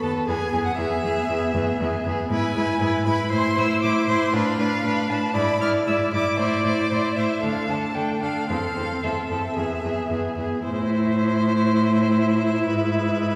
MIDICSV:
0, 0, Header, 1, 5, 480
1, 0, Start_track
1, 0, Key_signature, 0, "minor"
1, 0, Tempo, 507614
1, 269, Time_signature, 4, 2, 24, 8
1, 5069, Tempo, 519481
1, 7469, Tempo, 537634
1, 9869, Tempo, 514139
1, 12397, End_track
2, 0, Start_track
2, 0, Title_t, "Violin"
2, 0, Program_c, 0, 40
2, 28, Note_on_c, 0, 81, 61
2, 103, Note_off_c, 0, 81, 0
2, 266, Note_on_c, 0, 80, 73
2, 616, Note_off_c, 0, 80, 0
2, 622, Note_on_c, 0, 78, 62
2, 724, Note_off_c, 0, 78, 0
2, 729, Note_on_c, 0, 76, 75
2, 1914, Note_off_c, 0, 76, 0
2, 2187, Note_on_c, 0, 80, 81
2, 2867, Note_off_c, 0, 80, 0
2, 2891, Note_on_c, 0, 83, 73
2, 3131, Note_off_c, 0, 83, 0
2, 3136, Note_on_c, 0, 84, 81
2, 3388, Note_on_c, 0, 88, 80
2, 3403, Note_off_c, 0, 84, 0
2, 3611, Note_off_c, 0, 88, 0
2, 3617, Note_on_c, 0, 86, 83
2, 3845, Note_off_c, 0, 86, 0
2, 3850, Note_on_c, 0, 84, 78
2, 4098, Note_on_c, 0, 77, 84
2, 4112, Note_off_c, 0, 84, 0
2, 4821, Note_on_c, 0, 81, 71
2, 4835, Note_off_c, 0, 77, 0
2, 5057, Note_on_c, 0, 83, 83
2, 5071, Note_off_c, 0, 81, 0
2, 5296, Note_off_c, 0, 83, 0
2, 5301, Note_on_c, 0, 89, 84
2, 5375, Note_off_c, 0, 89, 0
2, 5540, Note_on_c, 0, 88, 66
2, 5614, Note_off_c, 0, 88, 0
2, 5789, Note_on_c, 0, 86, 78
2, 6021, Note_off_c, 0, 86, 0
2, 6027, Note_on_c, 0, 74, 86
2, 6733, Note_on_c, 0, 76, 61
2, 6747, Note_off_c, 0, 74, 0
2, 6975, Note_on_c, 0, 77, 69
2, 6989, Note_off_c, 0, 76, 0
2, 7232, Note_on_c, 0, 81, 67
2, 7246, Note_off_c, 0, 77, 0
2, 7457, Note_on_c, 0, 79, 64
2, 7471, Note_off_c, 0, 81, 0
2, 7700, Note_off_c, 0, 79, 0
2, 7709, Note_on_c, 0, 77, 63
2, 7943, Note_off_c, 0, 77, 0
2, 7951, Note_on_c, 0, 77, 69
2, 8436, Note_on_c, 0, 76, 52
2, 8449, Note_off_c, 0, 77, 0
2, 9633, Note_off_c, 0, 76, 0
2, 9866, Note_on_c, 0, 76, 62
2, 12397, Note_off_c, 0, 76, 0
2, 12397, End_track
3, 0, Start_track
3, 0, Title_t, "Violin"
3, 0, Program_c, 1, 40
3, 22, Note_on_c, 1, 69, 46
3, 254, Note_off_c, 1, 69, 0
3, 260, Note_on_c, 1, 68, 52
3, 484, Note_off_c, 1, 68, 0
3, 490, Note_on_c, 1, 68, 44
3, 723, Note_off_c, 1, 68, 0
3, 729, Note_on_c, 1, 68, 49
3, 968, Note_off_c, 1, 68, 0
3, 973, Note_on_c, 1, 68, 53
3, 1217, Note_off_c, 1, 68, 0
3, 1223, Note_on_c, 1, 68, 51
3, 1459, Note_off_c, 1, 68, 0
3, 1465, Note_on_c, 1, 68, 48
3, 1696, Note_off_c, 1, 68, 0
3, 1701, Note_on_c, 1, 68, 44
3, 1939, Note_off_c, 1, 68, 0
3, 1952, Note_on_c, 1, 68, 50
3, 2184, Note_off_c, 1, 68, 0
3, 2194, Note_on_c, 1, 71, 58
3, 2418, Note_off_c, 1, 71, 0
3, 2424, Note_on_c, 1, 71, 51
3, 2658, Note_off_c, 1, 71, 0
3, 2666, Note_on_c, 1, 71, 55
3, 2900, Note_off_c, 1, 71, 0
3, 2905, Note_on_c, 1, 71, 52
3, 3127, Note_off_c, 1, 71, 0
3, 3132, Note_on_c, 1, 72, 57
3, 3374, Note_off_c, 1, 72, 0
3, 3379, Note_on_c, 1, 72, 48
3, 3604, Note_off_c, 1, 72, 0
3, 3609, Note_on_c, 1, 72, 52
3, 3844, Note_off_c, 1, 72, 0
3, 3849, Note_on_c, 1, 72, 55
3, 4091, Note_off_c, 1, 72, 0
3, 4111, Note_on_c, 1, 71, 57
3, 4336, Note_off_c, 1, 71, 0
3, 4342, Note_on_c, 1, 71, 54
3, 4579, Note_off_c, 1, 71, 0
3, 4585, Note_on_c, 1, 71, 53
3, 4817, Note_off_c, 1, 71, 0
3, 4823, Note_on_c, 1, 71, 53
3, 5059, Note_off_c, 1, 71, 0
3, 5065, Note_on_c, 1, 74, 56
3, 5300, Note_off_c, 1, 74, 0
3, 5305, Note_on_c, 1, 74, 48
3, 5541, Note_off_c, 1, 74, 0
3, 5546, Note_on_c, 1, 74, 49
3, 5777, Note_off_c, 1, 74, 0
3, 5782, Note_on_c, 1, 74, 49
3, 6018, Note_off_c, 1, 74, 0
3, 6022, Note_on_c, 1, 72, 55
3, 6257, Note_off_c, 1, 72, 0
3, 6269, Note_on_c, 1, 72, 51
3, 6500, Note_off_c, 1, 72, 0
3, 6508, Note_on_c, 1, 72, 50
3, 6735, Note_off_c, 1, 72, 0
3, 6741, Note_on_c, 1, 72, 50
3, 6971, Note_off_c, 1, 72, 0
3, 6977, Note_on_c, 1, 69, 49
3, 7211, Note_off_c, 1, 69, 0
3, 7216, Note_on_c, 1, 69, 39
3, 7453, Note_off_c, 1, 69, 0
3, 7458, Note_on_c, 1, 69, 44
3, 7695, Note_off_c, 1, 69, 0
3, 7702, Note_on_c, 1, 69, 38
3, 7928, Note_off_c, 1, 69, 0
3, 7933, Note_on_c, 1, 69, 43
3, 8177, Note_off_c, 1, 69, 0
3, 8185, Note_on_c, 1, 69, 40
3, 8418, Note_off_c, 1, 69, 0
3, 8423, Note_on_c, 1, 69, 37
3, 8660, Note_off_c, 1, 69, 0
3, 8666, Note_on_c, 1, 69, 37
3, 8893, Note_off_c, 1, 69, 0
3, 8899, Note_on_c, 1, 68, 41
3, 9139, Note_off_c, 1, 68, 0
3, 9144, Note_on_c, 1, 68, 38
3, 9382, Note_off_c, 1, 68, 0
3, 9389, Note_on_c, 1, 68, 35
3, 9625, Note_off_c, 1, 68, 0
3, 9629, Note_on_c, 1, 68, 37
3, 9862, Note_off_c, 1, 68, 0
3, 9866, Note_on_c, 1, 72, 59
3, 11751, Note_off_c, 1, 72, 0
3, 11774, Note_on_c, 1, 71, 59
3, 12397, Note_off_c, 1, 71, 0
3, 12397, End_track
4, 0, Start_track
4, 0, Title_t, "Viola"
4, 0, Program_c, 2, 41
4, 25, Note_on_c, 2, 59, 43
4, 262, Note_off_c, 2, 59, 0
4, 266, Note_on_c, 2, 59, 51
4, 502, Note_off_c, 2, 59, 0
4, 512, Note_on_c, 2, 59, 46
4, 730, Note_off_c, 2, 59, 0
4, 735, Note_on_c, 2, 59, 51
4, 976, Note_off_c, 2, 59, 0
4, 985, Note_on_c, 2, 59, 46
4, 1222, Note_off_c, 2, 59, 0
4, 1233, Note_on_c, 2, 59, 51
4, 1461, Note_off_c, 2, 59, 0
4, 1466, Note_on_c, 2, 59, 49
4, 1694, Note_off_c, 2, 59, 0
4, 1699, Note_on_c, 2, 59, 54
4, 1938, Note_off_c, 2, 59, 0
4, 1949, Note_on_c, 2, 59, 49
4, 2176, Note_off_c, 2, 59, 0
4, 2181, Note_on_c, 2, 64, 54
4, 2418, Note_off_c, 2, 64, 0
4, 2439, Note_on_c, 2, 64, 48
4, 2652, Note_off_c, 2, 64, 0
4, 2658, Note_on_c, 2, 64, 57
4, 2896, Note_off_c, 2, 64, 0
4, 2903, Note_on_c, 2, 64, 47
4, 3132, Note_off_c, 2, 64, 0
4, 3138, Note_on_c, 2, 64, 57
4, 3372, Note_off_c, 2, 64, 0
4, 3377, Note_on_c, 2, 64, 51
4, 3615, Note_off_c, 2, 64, 0
4, 3623, Note_on_c, 2, 64, 58
4, 3857, Note_off_c, 2, 64, 0
4, 3869, Note_on_c, 2, 64, 53
4, 4102, Note_off_c, 2, 64, 0
4, 4109, Note_on_c, 2, 62, 58
4, 4342, Note_off_c, 2, 62, 0
4, 4348, Note_on_c, 2, 62, 52
4, 4582, Note_off_c, 2, 62, 0
4, 4595, Note_on_c, 2, 62, 55
4, 4816, Note_off_c, 2, 62, 0
4, 4821, Note_on_c, 2, 62, 47
4, 5050, Note_off_c, 2, 62, 0
4, 5056, Note_on_c, 2, 64, 54
4, 5283, Note_off_c, 2, 64, 0
4, 5288, Note_on_c, 2, 64, 54
4, 5532, Note_off_c, 2, 64, 0
4, 5540, Note_on_c, 2, 64, 55
4, 5778, Note_off_c, 2, 64, 0
4, 5789, Note_on_c, 2, 64, 49
4, 6021, Note_off_c, 2, 64, 0
4, 6031, Note_on_c, 2, 64, 55
4, 6261, Note_off_c, 2, 64, 0
4, 6267, Note_on_c, 2, 64, 47
4, 6499, Note_off_c, 2, 64, 0
4, 6509, Note_on_c, 2, 64, 45
4, 6736, Note_off_c, 2, 64, 0
4, 6742, Note_on_c, 2, 64, 40
4, 6977, Note_off_c, 2, 64, 0
4, 6992, Note_on_c, 2, 62, 45
4, 7224, Note_off_c, 2, 62, 0
4, 7233, Note_on_c, 2, 62, 42
4, 7467, Note_off_c, 2, 62, 0
4, 7472, Note_on_c, 2, 62, 43
4, 7702, Note_off_c, 2, 62, 0
4, 7710, Note_on_c, 2, 62, 42
4, 7943, Note_off_c, 2, 62, 0
4, 7948, Note_on_c, 2, 60, 43
4, 8180, Note_off_c, 2, 60, 0
4, 8186, Note_on_c, 2, 60, 40
4, 8424, Note_off_c, 2, 60, 0
4, 8430, Note_on_c, 2, 60, 41
4, 8660, Note_off_c, 2, 60, 0
4, 8666, Note_on_c, 2, 60, 34
4, 8893, Note_off_c, 2, 60, 0
4, 8898, Note_on_c, 2, 59, 38
4, 9127, Note_off_c, 2, 59, 0
4, 9133, Note_on_c, 2, 59, 35
4, 9371, Note_off_c, 2, 59, 0
4, 9376, Note_on_c, 2, 59, 42
4, 9607, Note_off_c, 2, 59, 0
4, 9613, Note_on_c, 2, 59, 38
4, 9848, Note_off_c, 2, 59, 0
4, 9854, Note_on_c, 2, 64, 60
4, 12397, Note_off_c, 2, 64, 0
4, 12397, End_track
5, 0, Start_track
5, 0, Title_t, "Cello"
5, 0, Program_c, 3, 42
5, 29, Note_on_c, 3, 39, 45
5, 105, Note_off_c, 3, 39, 0
5, 268, Note_on_c, 3, 40, 56
5, 344, Note_off_c, 3, 40, 0
5, 502, Note_on_c, 3, 40, 53
5, 577, Note_off_c, 3, 40, 0
5, 735, Note_on_c, 3, 40, 58
5, 811, Note_off_c, 3, 40, 0
5, 980, Note_on_c, 3, 40, 49
5, 1056, Note_off_c, 3, 40, 0
5, 1223, Note_on_c, 3, 40, 57
5, 1299, Note_off_c, 3, 40, 0
5, 1458, Note_on_c, 3, 40, 54
5, 1534, Note_off_c, 3, 40, 0
5, 1703, Note_on_c, 3, 40, 59
5, 1778, Note_off_c, 3, 40, 0
5, 1949, Note_on_c, 3, 40, 53
5, 2025, Note_off_c, 3, 40, 0
5, 2177, Note_on_c, 3, 44, 65
5, 2253, Note_off_c, 3, 44, 0
5, 2424, Note_on_c, 3, 44, 55
5, 2500, Note_off_c, 3, 44, 0
5, 2656, Note_on_c, 3, 44, 60
5, 2732, Note_off_c, 3, 44, 0
5, 2894, Note_on_c, 3, 44, 50
5, 2970, Note_off_c, 3, 44, 0
5, 3143, Note_on_c, 3, 45, 59
5, 3218, Note_off_c, 3, 45, 0
5, 3376, Note_on_c, 3, 45, 59
5, 3452, Note_off_c, 3, 45, 0
5, 3627, Note_on_c, 3, 45, 55
5, 3703, Note_off_c, 3, 45, 0
5, 3854, Note_on_c, 3, 45, 57
5, 3930, Note_off_c, 3, 45, 0
5, 4093, Note_on_c, 3, 45, 69
5, 4169, Note_off_c, 3, 45, 0
5, 4334, Note_on_c, 3, 45, 59
5, 4410, Note_off_c, 3, 45, 0
5, 4577, Note_on_c, 3, 45, 58
5, 4652, Note_off_c, 3, 45, 0
5, 4824, Note_on_c, 3, 45, 53
5, 4900, Note_off_c, 3, 45, 0
5, 5061, Note_on_c, 3, 44, 61
5, 5135, Note_off_c, 3, 44, 0
5, 5301, Note_on_c, 3, 44, 55
5, 5375, Note_off_c, 3, 44, 0
5, 5544, Note_on_c, 3, 44, 57
5, 5618, Note_off_c, 3, 44, 0
5, 5780, Note_on_c, 3, 44, 50
5, 5854, Note_off_c, 3, 44, 0
5, 6013, Note_on_c, 3, 45, 62
5, 6087, Note_off_c, 3, 45, 0
5, 6256, Note_on_c, 3, 45, 56
5, 6330, Note_off_c, 3, 45, 0
5, 6501, Note_on_c, 3, 45, 56
5, 6575, Note_off_c, 3, 45, 0
5, 6745, Note_on_c, 3, 45, 51
5, 6819, Note_off_c, 3, 45, 0
5, 6987, Note_on_c, 3, 38, 52
5, 7061, Note_off_c, 3, 38, 0
5, 7227, Note_on_c, 3, 38, 46
5, 7301, Note_off_c, 3, 38, 0
5, 7472, Note_on_c, 3, 38, 50
5, 7543, Note_off_c, 3, 38, 0
5, 7711, Note_on_c, 3, 38, 40
5, 7783, Note_off_c, 3, 38, 0
5, 7953, Note_on_c, 3, 40, 50
5, 8024, Note_off_c, 3, 40, 0
5, 8188, Note_on_c, 3, 40, 42
5, 8259, Note_off_c, 3, 40, 0
5, 8437, Note_on_c, 3, 40, 46
5, 8508, Note_off_c, 3, 40, 0
5, 8677, Note_on_c, 3, 40, 37
5, 8748, Note_off_c, 3, 40, 0
5, 8914, Note_on_c, 3, 40, 43
5, 8985, Note_off_c, 3, 40, 0
5, 9153, Note_on_c, 3, 40, 44
5, 9224, Note_off_c, 3, 40, 0
5, 9389, Note_on_c, 3, 40, 40
5, 9460, Note_off_c, 3, 40, 0
5, 9624, Note_on_c, 3, 40, 38
5, 9695, Note_off_c, 3, 40, 0
5, 9859, Note_on_c, 3, 45, 68
5, 11747, Note_off_c, 3, 45, 0
5, 11779, Note_on_c, 3, 44, 66
5, 12397, Note_off_c, 3, 44, 0
5, 12397, End_track
0, 0, End_of_file